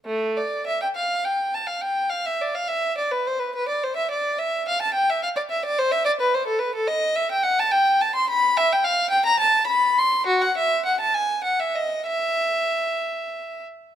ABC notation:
X:1
M:6/8
L:1/16
Q:3/8=70
K:Ephr
V:1 name="Violin"
A,2 d2 e g f2 g2 a f | g2 f e d f e2 d B c B | B d c e d2 e2 f a g e | f d e d c e d B c A B A |
^d2 e g ^f a g2 a c' b2 | e g f2 g _b a2 =b2 c'2 | ^F ^f e2 f a ^g2 f e ^d2 | e8- e2 z2 |]